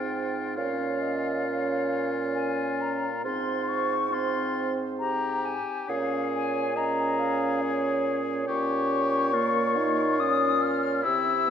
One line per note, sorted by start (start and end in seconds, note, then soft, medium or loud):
0.00 0.59 G#2 soft
0.00 0.53 C4 soft
0.00 0.53 F4 soft
0.00 0.59 C5 soft
0.00 0.56 G5 medium
0.56 3.24 A#2 soft
0.56 3.08 C#4 soft
0.56 3.21 F4 soft
0.56 1.02 C#5 soft
0.56 2.09 F5 medium
1.01 1.47 D#5 soft
1.46 2.35 C#5 medium
2.34 3.26 A#4 soft
2.34 2.82 G#5 medium
2.81 3.24 A#5 soft
3.24 5.57 G#2 soft
3.24 4.11 C4 soft
3.24 3.94 F4 soft
3.24 5.61 C5 medium
3.24 3.69 C6 medium
3.68 4.14 C#6 medium
4.11 5.57 C4 medium
4.11 4.71 F4 soft
4.11 4.73 C6 medium
4.99 5.90 G4 soft
4.99 5.46 A#5 medium
5.44 5.90 G#5 medium
5.88 8.44 A#2 medium
5.88 6.71 C#4 soft
5.88 6.75 G#4 soft
5.88 6.77 C#5 medium
5.88 6.32 F5 medium
6.34 6.78 G#5 medium
6.76 8.45 C#4 medium
6.76 8.44 G#4 medium
6.76 7.20 D#5 medium
6.76 7.62 A#5 medium
7.19 7.63 F5 medium
7.61 11.05 C#5 medium
8.48 11.02 A#2 medium
8.48 9.35 C#4 soft
8.48 9.35 G4 soft
8.48 10.21 C#6 medium
9.33 9.79 A#3 medium
9.33 11.05 F4 medium
9.77 10.22 D#4 medium
10.19 11.04 C#4 medium
10.19 10.63 D#6 medium
10.62 11.03 F6 medium
11.03 11.50 C3 medium
11.03 11.50 C4 soft
11.03 11.50 E4 medium
11.03 11.48 C5 medium
11.03 11.50 E6 medium